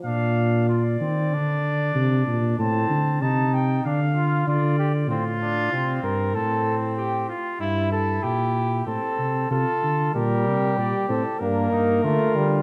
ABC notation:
X:1
M:4/4
L:1/8
Q:1/4=95
K:Bb
V:1 name="Trumpet"
f2 d6 | a2 a g f2 d2 | F3 B A z G F | =E A G2 A2 A2 |
[K:Gm] B2 d A B4 |]
V:2 name="Flugelhorn"
D2 F C D4 | C2 E2 D F F G | C D C2 C3 z | =E4 C2 F2 |
[K:Gm] G4 D E F2 |]
V:3 name="Trombone"
z8 | z8 | z8 | z8 |
[K:Gm] G,3 C B,2 A, G, |]
V:4 name="Tuba" clef=bass
B,,3 E, D,2 C, B,, | A,, D, C,2 D,2 D,2 | A,,2 C, G,, A,,3 z | G,,2 B,,2 A,, C, C, D, |
[K:Gm] B,, C, B,, A,, G,, G,, D, D, |]